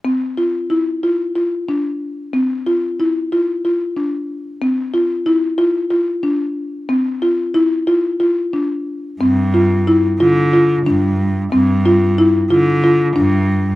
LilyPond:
<<
  \new Staff \with { instrumentName = "Marimba" } { \time 7/8 \key c \major \tempo 4 = 92 c'8 f'8 e'8 f'8 f'8 d'4 | c'8 f'8 e'8 f'8 f'8 d'4 | c'8 f'8 e'8 f'8 f'8 d'4 | c'8 f'8 e'8 f'8 f'8 d'4 |
c'8 f'8 e'8 f'8 f'8 d'4 | c'8 f'8 e'8 f'8 f'8 d'4 | }
  \new Staff \with { instrumentName = "Cello" } { \clef bass \time 7/8 \key c \major r2. r8 | r2. r8 | r2. r8 | r2. r8 |
g,4. d4 g,4 | g,4. d4 g,4 | }
>>